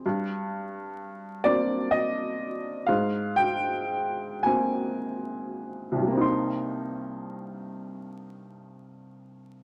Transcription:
<<
  \new Staff \with { instrumentName = "Upright piano" } { \time 6/8 \key c \minor \tempo 4. = 36 r4. d''8 ees''4 | f''8 g''4 aes''4. | <c, g, g bes c' ees' c'''>2. | }
  \new Staff \with { instrumentName = "Upright piano" } { \time 6/8 \key c \minor g,4. <bes c'>4. | aes,4. <bes c'>4. | r2. | }
>>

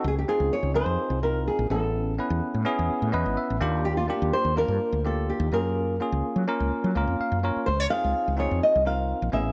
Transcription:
<<
  \new Staff \with { instrumentName = "Nylon-string guitar" } { \time 4/4 \key ges \lydian \tempo 4 = 126 aes'16 g'16 aes'8 des''8 c''4 bes'8 aes'8 a'8~ | a'4 r2. | g'16 f'16 g'8 c''8 bes'4 a'8 g'8 bes'8~ | bes'4 r2. |
c''16 des''16 f''4 des''8 ees''8 f''4 e''8 | }
  \new Staff \with { instrumentName = "Tine electric piano" } { \time 4/4 \key ges \lydian << { r1 | r2 r8 ees''8 e''8 g''8 | r1 | r2. f''8 des''8 |
r1 | } \\ { r8 <c' ees' f' aes'>4 <c' ees' f' aes'>4 <c' ees' f' bes'>4 <b cis' e' a'>8~ | <b cis' e' a'>8 <b cis' e' b'>4 <b cis' e' gis'>4 <b cis' e' b'>4 <bes d' f' g'>8~ | <bes d' f' g'>8 <bes d' f' g'>4 <bes d' f' bes'>4 <bes d' f' g'>4 <bes des' f' aes'>8~ | <bes des' f' aes'>8 <bes des' f' aes'>4 <bes des' f' bes'>4 <bes des' f' bes'>4 <bes des' f' bes'>8 |
r8 <c' ees' f' aes'>4 <c' ees' f' aes'>4 <c' ees' f' bes'>4 <b cis' e' gis'>8 | } >> }
  \new Staff \with { instrumentName = "Fretless electric bass" } { \clef bass \time 4/4 \key ges \lydian des,8 r16 des,16 r16 des,8 f,16 r16 c,4 bes,,16 a,,8~ | a,,8. e,16 r16 a,16 r16 e,16 r16 a,16 e,16 gis,,16 r16 a,,16 ees,8~ | ees,8. ees,16 r16 ees,8 g,16 r16 d,4 ees,16 ges,8~ | ges,8. des,16 r16 ges16 r16 des,16 r16 ges16 des,16 f,16 r16 ges,8 r16 |
des,8 r16 des,16 r16 des,8 f,16 r16 c,4 bes,,16 a,,8 | }
>>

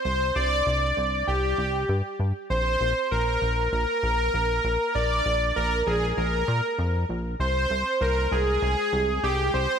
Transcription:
<<
  \new Staff \with { instrumentName = "Supersaw synth" } { \time 4/4 \key bes \mixolydian \tempo 4 = 98 c''8 d''4. g'4. r8 | c''4 bes'4 bes'2 | d''4 bes'8 aes'8 bes'4. r8 | c''4 bes'8 aes'4. g'8 c''8 | }
  \new Staff \with { instrumentName = "Analog synth bass" } { \clef bass \time 4/4 \key bes \mixolydian c,8 c,8 c,8 c,8 c,8 c,8 g,8 g,8 | bes,,8 bes,,8 bes,,8 bes,,8 bes,,8 bes,,8 bes,,8 bes,,8 | bes,,8 bes,,8 bes,,8 bes,,8 bes,,8 bes,8 f,8 bes,,8 | c,8 c,8 c,8 c,8 c,8 c,8 c,8 c,8 | }
>>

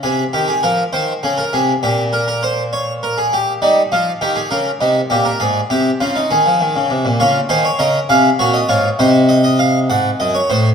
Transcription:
<<
  \new Staff \with { instrumentName = "Harpsichord" } { \time 12/8 \key aes \mixolydian \tempo 4. = 67 << { r1. | r1. | des''8 c''16 des''16 ees''8 f''8 des''16 ees''16 des''8 c''8 ees''16 ees''16 f''8 ges''8 ees''16 des''16 c''8 | } \\ { aes'8 g'16 aes'16 bes'8 c''8 aes'16 bes'16 aes'8 g'8 bes'16 bes'16 c''8 des''8 bes'16 aes'16 g'8 | ees'8 f'8 g'16 aes'16 bes'8 ees'8 g'16 bes'16 aes'8 g'8 f'16 ees'16 aes'4. | f'8 aes'8 bes'8 aes'8 ges'8 f'8 ees'2. | } >> }
  \new Staff \with { instrumentName = "Harpsichord" } { \clef bass \time 12/8 \key aes \mixolydian c8 ees8 f8 ees8 des8 c8 bes,2. | g8 f8 ees8 des8 c8 bes,8 aes,8 c8 des8 ees16 f16 ees16 des16 c16 bes,16 | des8 ees8 des8 c8 bes,8 aes,8 c4. aes,8 ges,8 a,8 | }
>>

